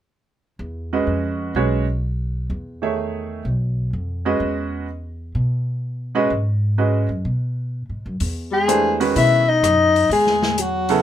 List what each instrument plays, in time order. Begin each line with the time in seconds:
0.59 upright bass E2
0.93 grand piano G#3 C#4 F#4 B4 D#5
1.07 upright bass F2
1.55 upright bass B1, grand piano G#3 C#4 F#4 B4 C#5
2.50 upright bass E2
2.82 grand piano D#3 A3 G#4 C#5 E5
3.45 upright bass B1
3.93 upright bass F2
4.25 grand piano G#3 C#4 F#4 B4 D#5
4.40 upright bass E2
5.35 upright bass B2
6.15 grand piano G#3 C#4 F#4 B4 D#5
6.30 upright bass G#2
6.78 grand piano G#3 C#4 F#4 B4 D#5
7.09 upright bass F#2
7.25 upright bass B2
7.89 upright bass G#2
8.06 upright bass F#2
8.20 upright bass E2, open hi-hat
8.51 tenor saxophone G#3, soprano saxophone G#4
8.68 grand piano E3 A3 D4 G4 C5, closed hi-hat
9.00 grand piano D#3 G#3 C#4 F#4 B4, open hi-hat
9.15 upright bass B2, tenor saxophone E4, soprano saxophone E5, open hi-hat
9.48 tenor saxophone D#4, soprano saxophone D#5
9.63 upright bass F#2, cross-stick, closed hi-hat
9.96 open hi-hat
10.09 upright bass E2, tenor saxophone G#3, soprano saxophone G#4, open hi-hat
10.27 snare
10.42 snare
10.58 tenor saxophone F#3, soprano saxophone F#4, closed hi-hat
10.89 grand piano C#3 F#3 B3 E4 A4, open hi-hat